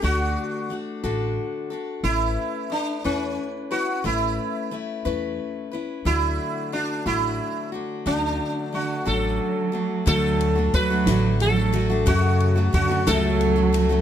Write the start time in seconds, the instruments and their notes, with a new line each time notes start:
0.02 upright bass D2, steel-string acoustic guitar D3 A3 D4 F#4 A4, sitar F#4
0.70 steel-string acoustic guitar A3 D4 F#4 A4
1.04 upright bass A1, steel-string acoustic guitar D3 A3 D4 F#4 A4
1.70 steel-string acoustic guitar D4 F#4 A4
2.04 upright bass A1, steel-string acoustic guitar A3 C#4 E4 B4, sitar E4
2.70 steel-string acoustic guitar A3 E4 B4, sitar D4
3.04 upright bass E2, steel-string acoustic guitar A3 C#4 E4 B4, sitar C#4
3.71 steel-string acoustic guitar C#4 E4 B4, sitar F#4
4.04 upright bass A1, steel-string acoustic guitar A3 C#4 E4 B4, sitar E4
4.71 steel-string acoustic guitar A3 C#4 E4 B4
5.05 upright bass E2, steel-string acoustic guitar A3 C#4 E4 B4
5.72 steel-string acoustic guitar C#4 E4 B4
6.05 upright bass D2, steel-string acoustic guitar D3 F#3 A3 D4 F#4, sitar E4
6.72 steel-string acoustic guitar F#3 A3 D4 F#4, sitar D4
7.06 upright bass A1, steel-string acoustic guitar D3 F#3 A3 D4 F#4, sitar E4
7.72 steel-string acoustic guitar A3 D4 F#4
8.06 upright bass D2, steel-string acoustic guitar D3 F#3 A3 D4 F#4, sitar D4
8.73 cello D3, steel-string acoustic guitar F#3 A3 D4 F#4, sitar F#4
9.05 upright bass A1, steel-string acoustic guitar D3 F#3 A3 D4 F#4, cello F#3, sitar A4
9.12 sitar C#4
9.72 steel-string acoustic guitar A3 D4 F#4
10.06 upright bass D2, steel-string acoustic guitar D3 F#3 A3 D4 F#4, cello F#3, sitar A4, kick, ride
10.40 ride
10.55 steel-string acoustic guitar A3 D4 F#4
10.74 upright bass D2, steel-string acoustic guitar F#3 A3 D4 F#4, cello F#3, sitar B4, kick, ride
10.90 steel-string acoustic guitar A3 D4 F#4
11.06 upright bass A1, steel-string acoustic guitar D3 F#3 A3 D4 F#4, snare, ride
11.40 cello F#3, sitar A4, ride
11.56 steel-string acoustic guitar A3 D4 F#4
11.73 steel-string acoustic guitar F#3 A3 D4 F#4, ride
11.90 steel-string acoustic guitar A3 D4 F#4
12.06 steel-string acoustic guitar F#2 C#3 F#3 A3 C#4 F#4, upright bass F#2, cello C#3, sitar F#4, kick, ride
12.40 ride
12.56 steel-string acoustic guitar F#3 A3 C#4 F#4
12.73 upright bass F#2, cello D3, steel-string acoustic guitar F#3 A3 C#4 F#4, sitar F#4, kick, ride
12.89 steel-string acoustic guitar F#3 A3 C#4 F#4
13.07 upright bass C#2, steel-string acoustic guitar F#2 C#3 F#3 A3 C#4 F#4, cello F#3, sitar A4, snare, ride
13.41 ride
13.56 steel-string acoustic guitar F#3 A3 C#4 F#4
13.73 steel-string acoustic guitar F#3 A3 C#4 F#4, ride
13.89 steel-string acoustic guitar F#3 A3 C#4 F#4